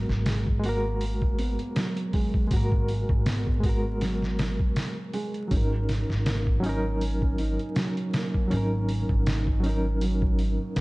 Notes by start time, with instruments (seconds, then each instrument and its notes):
Already playing: felt piano F#3, reed electric piano G#3 B3 F#4 A#4
0.09 upright bass G#1, snare
0.26 felt piano G#3, snare, open hi-hat
0.47 kick
0.60 reed electric piano G#3
0.64 felt piano A#3, reed electric piano F#4, open hi-hat
0.69 reed electric piano A#4
1.01 open hi-hat
1.22 kick
1.38 felt piano B3, open hi-hat
1.59 closed hi-hat
1.76 felt piano F#3, snare, open hi-hat
1.97 closed hi-hat
2.13 felt piano G#3, kick, open hi-hat
2.34 kick
2.47 upright bass G#1, reed electric piano G#3, felt piano A#3, kick, open hi-hat
2.53 reed electric piano F#4 A#4
2.72 kick
2.88 open hi-hat
3.09 upright bass G#1, kick
3.26 felt piano B3, snare, open hi-hat
3.47 kick
3.60 reed electric piano G#3 B3, kick, open hi-hat
3.66 reed electric piano F#4 A#4
4.01 felt piano F#3, snare, open hi-hat
4.22 snare
4.39 snare, open hi-hat
4.59 kick
4.76 snare, open hi-hat
5.14 felt piano G#3, open hi-hat
5.34 closed hi-hat
5.48 upright bass G#1, reed electric piano F#3 C#4, felt piano F#3, kick, open hi-hat
5.54 reed electric piano D#4 A#4
5.89 snare, open hi-hat
6.09 upright bass G#1, snare
6.26 felt piano A#3, snare, open hi-hat
6.47 kick
6.60 reed electric piano F#3 C#4, felt piano C#4, open hi-hat
6.66 reed electric piano D#4 A#4
7.01 open hi-hat
7.22 kick
7.38 felt piano D#4, open hi-hat
7.59 closed hi-hat
7.76 felt piano F#3, snare, open hi-hat
7.97 closed hi-hat
8.13 felt piano A#3, snare, open hi-hat
8.34 kick
8.48 upright bass G#1, reed electric piano F#3 C#4, felt piano C#4, open hi-hat
8.54 reed electric piano D#4 A#4
8.89 open hi-hat
9.09 upright bass G#1, kick
9.26 felt piano D#4, snare, open hi-hat
9.47 kick
9.60 reed electric piano F#3 C#4, open hi-hat
9.66 reed electric piano D#4 A#4
10.01 felt piano F#3, open hi-hat
10.22 kick
10.39 open hi-hat
10.76 upright bass D#2, felt piano A#3, snare, open hi-hat